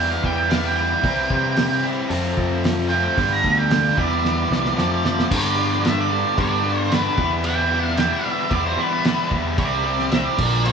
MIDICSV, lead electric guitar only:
0, 0, Header, 1, 2, 480
1, 0, Start_track
1, 0, Tempo, 534283
1, 934, Time_signature, 4, 2, 24, 8
1, 9631, End_track
2, 0, Start_track
2, 0, Title_t, "Lead electric guitar"
2, 0, Program_c, 0, 29
2, 91, Note_on_c, 0, 77, 88
2, 224, Note_off_c, 0, 77, 0
2, 224, Note_on_c, 0, 79, 89
2, 319, Note_off_c, 0, 79, 0
2, 330, Note_on_c, 0, 79, 94
2, 445, Note_off_c, 0, 79, 0
2, 445, Note_on_c, 0, 77, 86
2, 583, Note_off_c, 0, 77, 0
2, 583, Note_on_c, 0, 79, 104
2, 680, Note_off_c, 0, 79, 0
2, 691, Note_on_c, 0, 79, 109
2, 1624, Note_off_c, 0, 79, 0
2, 2598, Note_on_c, 0, 79, 114
2, 2722, Note_off_c, 0, 79, 0
2, 2732, Note_on_c, 0, 79, 107
2, 2965, Note_off_c, 0, 79, 0
2, 2987, Note_on_c, 0, 82, 92
2, 3210, Note_on_c, 0, 79, 94
2, 3213, Note_off_c, 0, 82, 0
2, 3560, Note_off_c, 0, 79, 0
2, 3579, Note_on_c, 0, 74, 115
2, 4738, Note_off_c, 0, 74, 0
2, 4803, Note_on_c, 0, 74, 89
2, 5272, Note_on_c, 0, 76, 85
2, 5280, Note_off_c, 0, 74, 0
2, 5374, Note_off_c, 0, 76, 0
2, 5395, Note_on_c, 0, 74, 90
2, 5718, Note_off_c, 0, 74, 0
2, 5752, Note_on_c, 0, 74, 96
2, 6188, Note_off_c, 0, 74, 0
2, 6224, Note_on_c, 0, 71, 86
2, 6552, Note_off_c, 0, 71, 0
2, 6696, Note_on_c, 0, 79, 103
2, 7139, Note_off_c, 0, 79, 0
2, 7163, Note_on_c, 0, 79, 103
2, 7283, Note_off_c, 0, 79, 0
2, 7287, Note_on_c, 0, 76, 99
2, 7644, Note_on_c, 0, 74, 98
2, 7659, Note_off_c, 0, 76, 0
2, 7770, Note_off_c, 0, 74, 0
2, 7777, Note_on_c, 0, 72, 91
2, 7897, Note_off_c, 0, 72, 0
2, 7897, Note_on_c, 0, 71, 78
2, 8341, Note_off_c, 0, 71, 0
2, 8617, Note_on_c, 0, 74, 88
2, 9084, Note_off_c, 0, 74, 0
2, 9088, Note_on_c, 0, 76, 95
2, 9208, Note_off_c, 0, 76, 0
2, 9208, Note_on_c, 0, 74, 92
2, 9556, Note_off_c, 0, 74, 0
2, 9567, Note_on_c, 0, 74, 101
2, 9631, Note_off_c, 0, 74, 0
2, 9631, End_track
0, 0, End_of_file